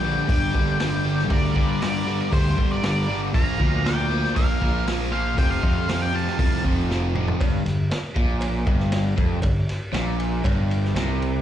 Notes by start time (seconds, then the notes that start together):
Already playing: A#1 A#3 D5 G5
0.04 G2 D3 G3
0.28 G1 G2 D3 G3 D5, kick, open hi-hat
0.32 G5
0.54 G1 G2 D3 G3, kick
0.79 G2 D3 G3, snare, open hi-hat
1.04 G2 D3 G3
1.19 snare
1.30 D2 G2 D3 G3 A#4 D5, kick, open hi-hat
1.55 G2 D3 G3, kick
1.81 G2 D3 G3 A#4 D5, snare, open hi-hat
2.06 G2 D3 G3
2.31 D2 G2 D3 G3 G4 C5, kick, open hi-hat
2.57 G1 G2 D3 G3, kick
2.71 A#4 D5
2.82 G2 D3 G3 A#4 D5, snare, open hi-hat
3.08 G2 D3 G3
3.33 A#1 A#2 F3 A#3 F5 A#5, kick, open hi-hat
3.59 D2 A#2 F3 A#3, kick
3.84 A#2 F3 A#3 D5 G5, snare, open hi-hat
4.09 A#2 F3 A#3
4.25 snare
4.36 A#1 A#2 F3 A#3 A#4 F5, kick, open hi-hat
4.61 A#1 A#2 F3 A#3, kick
4.87 A#2 F3 A#3, snare, open hi-hat
5.11 A#2 F3 A#3 C5 F5
5.37 F1 F2 C3 F3 C5 G5, kick, open hi-hat
5.50 C5 F5
5.62 F2 C3 F3, kick
5.88 F2 C3 F3 C5 F5, snare, open hi-hat
6.01 D5 G5
6.13 F2 C3 F3 F5 A5
6.27 snare
6.39 C2 F2 C3 F3, kick, open hi-hat
6.65 F1 F2 C3 F3, kick
6.90 F2 C3 F3, snare
7.15 F2 C3 F3, mid tom
7.28 floor tom
7.40 G1 G2, kick, ride, cowbell
7.66 G1 G2, snare, ride
7.91 snare, ride, cowbell
8.16 A#1 A#2, kick, ride
8.41 ride, cowbell
8.66 G1 G2, kick, ride
8.80 snare
8.92 snare, ride, cowbell
9.16 F1 F2, kick, ride
9.42 G1 G2, kick, ride, cowbell
9.69 snare, ride
9.93 A#1 A#2, snare, ride, cowbell
10.20 ride
10.43 G1 G2, kick, ride, cowbell
10.71 ride
10.85 snare
10.94 C2 C3, snare, ride, cowbell
11.22 ride